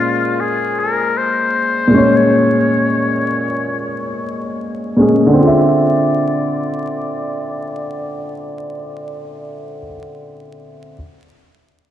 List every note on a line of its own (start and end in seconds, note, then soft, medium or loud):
0.00 1.84 A#2 medium
0.00 1.86 G#3 medium
0.00 1.88 C#4 medium
0.00 0.42 F4 medium
0.00 1.89 C5 medium
0.40 0.81 G#4 medium
0.79 1.19 A#4 loud
1.17 2.18 C5 loud
1.88 4.93 A#2 medium
1.88 4.94 G#3 medium
1.94 4.96 C#4 medium
1.94 4.98 C#5 medium
2.16 4.61 C#5 medium
4.97 5.36 A#2 medium
4.97 5.36 G#3 soft
4.97 5.37 C#4 soft
5.01 5.38 G#4 medium
5.27 9.79 D3 medium
5.33 9.86 C4 medium
5.39 9.92 F4 medium
5.39 9.21 D5 medium
5.47 9.95 E5 medium